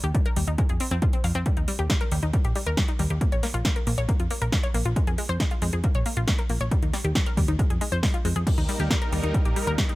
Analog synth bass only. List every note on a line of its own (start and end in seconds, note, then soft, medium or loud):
0.04 0.12 D#2 medium
0.36 0.45 D#2 medium
0.47 0.56 D#2 medium
0.69 0.78 F2 medium
0.91 1.00 F2 medium
1.24 1.33 F2 medium
1.35 1.44 F2 medium
1.57 1.66 D#2 medium
1.79 1.88 D#2 medium
2.12 2.21 D#2 medium
2.23 2.31 D#2 medium
2.45 2.53 A#1 medium
2.67 2.75 D#2 medium
2.99 3.08 D#2 medium
3.10 3.19 D#2 medium
3.32 3.41 A#1 medium
3.54 3.63 A#1 medium
3.87 3.96 A#1 medium
3.98 4.07 A#1 medium
4.20 4.29 F2 medium
4.41 4.50 A#1 medium
4.74 4.83 A#1 medium
4.85 4.94 A#1 medium
5.07 5.16 F2 medium
5.29 5.38 F2 medium
5.62 5.71 F2 medium
5.73 5.82 F2 medium
5.95 6.04 A#1 medium
6.17 6.26 A#1 medium
6.50 6.58 A#1 medium
6.61 6.69 A#1 medium
6.82 6.91 D#2 medium
7.04 7.13 D#2 medium
7.37 7.46 D#2 medium
7.48 7.57 D#2 medium
7.70 7.79 F2 medium
7.92 8.01 F2 medium
8.25 8.34 F2 loud
8.36 8.45 F2 medium
8.58 8.67 D#2 medium
8.80 8.88 D#2 medium
9.13 9.21 D#2 medium
9.23 9.32 D#2 medium
9.45 9.54 A#1 medium
9.67 9.76 D#2 medium